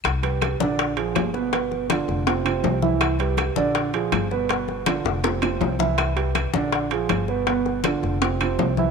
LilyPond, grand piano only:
\new Staff \with { instrumentName = "Grand piano" } { \time 4/4 \key c \major \tempo 4 = 162 r8 <g g' b'>4 <d d' d''>4 <f f' aes'>4 <b, b b'>8 | <b, b b'>4 <d d' f'>4 <c c' f'>8 <c c' f'>4 <e e' e''>8~ | <e e' e''>8 <g g' b'>4 <d d' d''>4 <f f' aes'>4 <b, b b'>8 | <b, b b'>4 <d d' f'>4 <c c' f'>8 <c c' f'>4 <e e' e''>8~ |
<e e' e''>8 <g g' b'>4 <d d' d''>4 <f f' aes'>4 <b, b b'>8 | <b, b b'>4 <d d' f'>4 <c c' f'>8 <c c' f'>4 <e e' e''>8 | }